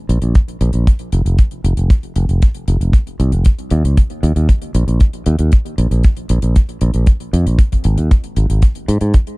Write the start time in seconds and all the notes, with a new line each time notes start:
0.09 A#1, closed hi-hat
0.22 A#1, closed hi-hat
0.35 kick, closed hi-hat
0.48 closed hi-hat
0.61 A#1, closed hi-hat
0.73 A#1, closed hi-hat
0.87 kick, closed hi-hat
0.99 closed hi-hat
1.12 F1, closed hi-hat
1.26 F1, closed hi-hat
1.38 kick, closed hi-hat
1.51 closed hi-hat
1.64 F1, closed hi-hat
1.77 F1, closed hi-hat
1.90 kick, closed hi-hat
2.03 closed hi-hat
2.16 F1, closed hi-hat
2.29 F1, closed hi-hat
2.42 kick, closed hi-hat
2.54 closed hi-hat
2.68 F1, closed hi-hat
2.81 F1, closed hi-hat
2.93 kick, closed hi-hat
3.07 closed hi-hat
3.20 C2, closed hi-hat
3.32 F1, closed hi-hat
3.45 kick, closed hi-hat
3.59 closed hi-hat
3.70 D#2, closed hi-hat
3.84 C#2, closed hi-hat
3.97 kick, closed hi-hat
4.10 closed hi-hat
4.23 D#2, closed hi-hat
4.36 D#2, closed hi-hat
4.49 kick, closed hi-hat
4.62 closed hi-hat
4.75 A#1, closed hi-hat
4.88 A#1, closed hi-hat
5.00 kick, closed hi-hat
5.13 closed hi-hat
5.26 D#2, closed hi-hat
5.39 D#2, closed hi-hat
5.52 kick, closed hi-hat
5.66 closed hi-hat
5.78 A#1, closed hi-hat
5.91 A#1, closed hi-hat
6.03 kick, closed hi-hat
6.17 closed hi-hat
6.29 A#1, closed hi-hat
6.42 A#1, closed hi-hat
6.56 kick, closed hi-hat
6.69 closed hi-hat
6.81 A#1, closed hi-hat
6.94 A#1, closed hi-hat
7.07 kick, closed hi-hat
7.20 closed hi-hat
7.33 F2, closed hi-hat
7.46 A#1, closed hi-hat
7.59 kick, closed hi-hat
7.72 kick, closed hi-hat
7.84 G#1, closed hi-hat
7.98 D#2, closed hi-hat
8.11 kick, closed hi-hat
8.24 closed hi-hat
8.36 G#1, closed hi-hat
8.50 G#1, closed hi-hat
8.62 kick, closed hi-hat
8.75 closed hi-hat
8.88 G#2, closed hi-hat
9.01 G#2, closed hi-hat
9.14 kick, closed hi-hat
9.27 closed hi-hat